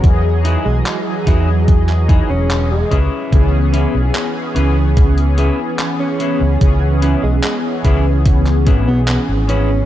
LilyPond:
<<
  \new Staff \with { instrumentName = "Clean electric guitar" } { \time 4/4 \key cis \minor \tempo 4 = 73 r8 <dis' e' fis' gis'>16 r8. <dis' e' fis' gis'>16 r8. <dis' e' fis' gis'>16 r8. <cis' e' gis' b'>8~ | <cis' e' gis' b'>8 <cis' e' gis' b'>16 r8. <cis' e' gis' b'>16 r8. <cis' e' gis' b'>16 r8. <cis' e' gis' b'>16 r16 | r8 <cis' e' gis' b'>16 r8. <cis' e' gis' b'>16 r8. <cis' e' gis' b'>16 r8. <cis' e' gis' b'>16 r16 | }
  \new Staff \with { instrumentName = "Analog polysynth" } { \time 4/4 \key cis \minor <e fis gis' dis''>4. <e fis gis' dis''>2 r8 | <e b cis' gis'>4. <e b cis' gis'>2~ <e b cis' gis'>8 | <e b cis' gis'>4. <e b cis' gis'>2~ <e b cis' gis'>8 | }
  \new Staff \with { instrumentName = "Alto saxophone" } { \time 4/4 \key cis \minor r8. gis16 gis16 r4. cis'8 gis16 r8 | r2. r16 cis'8. | r8. gis16 gis16 r4. b16 b16 r16 cis'8 | }
  \new Staff \with { instrumentName = "Fingered electric bass" } { \clef bass \time 4/4 \key cis \minor e,8 r16 b,,16 r8 e,4 r16 e,,8 r16 cis,16 r16 | cis,8 r16 b,,16 r8 cis,4 r4 r16 cis,16 | cis,8 r16 b,,16 r8 cis,4 gis,,16 b,,16 r16 gis,,8 r16 | }
  \new DrumStaff \with { instrumentName = "Drums" } \drummode { \time 4/4 <hh bd>8 hh8 <hc hh>8 <hh bd>8 <hh bd>16 <hc hh>16 <hh bd>8 <hc hh>8 <hh bd>8 | <hh bd>8 hh8 <hc hh>8 hh8 <hh bd>16 hh16 hh8 <hc hh>8 hh8 | <hh bd>8 hh8 <hc hh>8 <hh bd>8 <hh bd>16 <hc hh>16 <hh bd>8 <hc hh>8 hh8 | }
>>